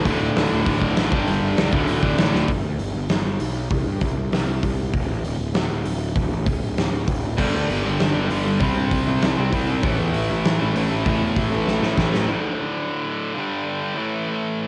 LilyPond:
<<
  \new Staff \with { instrumentName = "Distorted electric guitar" } { \clef bass \time 4/4 \key g \lydian \tempo 4 = 196 <d, a, d>2.~ <d, a, d>8 <g, d g>8~ | <g, d g>4. <d, a, d>2~ <d, a, d>8 | r1 | r1 |
r1 | r1 | <g, d g>2~ <g, d g>8 <g, d g>8 <g, d g>4 | <c g c'>2~ <c g c'>8 <c g c'>8 <c g c'>4 |
<a, e a>2~ <a, e a>8 <a, e a>8 <a, e a>4 | <a, e a>2~ <a, e a>8 <a, e a>8 <a, e a>4 | <d, a, d>2.~ <d, a, d>8 <g, d g>8~ | <g, d g>4. <a, e a>2~ <a, e a>8 | }
  \new Staff \with { instrumentName = "Distorted electric guitar" } { \clef bass \time 4/4 \key g \lydian <d, a, d>4. <d, a, d>2 <g, d g>8~ | <g, d g>4 <g, d g>8 <d, a, d>4. <d, a, d>4 | r1 | r1 |
r1 | r1 | <g, d g>4. <g, d g>2~ <g, d g>8 | <c g c'>4. <c g c'>2~ <c g c'>8 |
<a, e a>4. <a, e a>2~ <a, e a>8 | <a, e a>4. <a, e a>2~ <a, e a>8 | r1 | r1 | }
  \new Staff \with { instrumentName = "Overdriven electric guitar" } { \clef bass \time 4/4 \key g \lydian <d, a, d>2 <d, a, d>4. <g, d g>8~ | <g, d g>4. <d, a, d>2 <d, a, d>8 | r1 | r1 |
r1 | r1 | <g, d g>2.~ <g, d g>8 <g, d g>8 | <c g c'>2.~ <c g c'>8 <c g c'>8 |
<a, e a>2.~ <a, e a>8 <a, e a>8 | <a, e a>2.~ <a, e a>8 <a, e a>8 | r1 | r1 | }
  \new Staff \with { instrumentName = "Picked electric bass" } { \clef bass \time 4/4 \key g \lydian d,,8 d,,8 d,,8 d,,8 d,,8 d,,8 a,,8 g,,8 | g,,8 g,,8 cis,8 d,,8 d,,8 d,,8 a,,8 d,,8 | g,,8 d,8 g,,8 g,,8 g,,8 g,,8 b,,4 | c,8 g,8 c,8 c,8 c,8 c,8 c,4 |
d,,8 a,,8 d,,8 d,,8 d,,8 d,,8 d,,4 | d,,8 a,,8 d,,8 d,,8 d,,8 d,,8 d,,4 | g,,8 d,8 g,,8 g,,8 g,,8 g,,8 g,,4 | c,8 g,8 c,8 c,8 c,8 c,8 c,4 |
a,,8 e,8 a,,8 a,,8 a,,8 a,,8 a,,4 | a,,8 e,8 a,,8 a,,8 a,,8 a,,8 a,,4 | r1 | r1 | }
  \new DrumStaff \with { instrumentName = "Drums" } \drummode { \time 4/4 <hho bd>4 <hho sn>4 <hho bd>8 bd8 <hho sn>8 bd8 | hho4 <hho sn>8 bd8 hho8 bd8 <hho sn>8 sn8 | <hho bd>4 hho4 <hho sn>4 hho4 | <hho bd>4 <hho bd>4 <hho sn>4 <hho bd>4 |
<hho bd>4 hho4 <hho sn>4 hho4 | <hho bd>4 <hho bd>4 <hho sn>4 <hho bd>4 | <cymc bd>4 hho4 <hho sn>4 hho4 | <hho bd>4 <hho bd>4 <hho sn>4 <hho bd>4 |
<hho bd>4 hho4 <hho sn>4 hho4 | <hho bd>4 <hho bd>4 sn8 sn8 <bd sn>8 sn8 | r4 r4 r4 r4 | r4 r4 r4 r4 | }
>>